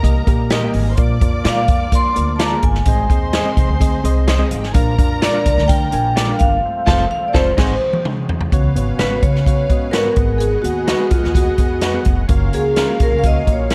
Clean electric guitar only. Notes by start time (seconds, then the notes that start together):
0.51 G4 A#4 D#5
1.45 F4 A#4 D5
2.39 F4 A#4 D5
3.34 G#4 C5 D#5
4.28 G#4 C5 D#5
5.22 F4 A#4 D5
6.16 F4 A#4 D5
6.87 F4 A4 C5
7.34 F4 A4 C5
7.57 D#4 F#4 C5
8.99 C#4 F#4 B4
9.93 C#4 F#4 B4
10.88 D#4 F#4 B4
11.82 D#4 F#4 B4
12.77 C#4 F4 A#4
13.71 C#4